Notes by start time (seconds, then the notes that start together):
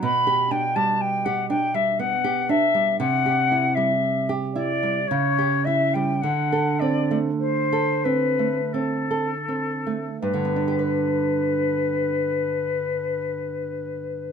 0.03 B2 B5
0.27 G4
0.51 D4 G5
0.76 G3 A5
1.01 G5
1.25 G4 F#5
1.49 D4 G5
1.74 G3 E5
1.99 B3 F#5
2.24 G4
2.49 D4 E5
2.74 G3
2.99 C3 F#5
3.26 G4
3.52 E4
3.75 G3 E5
4.29 G4
4.53 E4 D5
4.83 G3
5.08 C#3 C#5
5.38 G4
5.65 E4 E5
5.94 G3 G5
6.22 D3 F#5
6.52 A4
6.80 C4 D5
7.11 A3
7.39 C5
7.73 A4
8.04 C4 B4
8.39 A3
8.73 C4 A4
9.11 A4
9.48 C4
9.87 A3
10.21 G2 B4
10.34 D3
10.45 B3
10.56 D4
10.68 G4
10.79 B4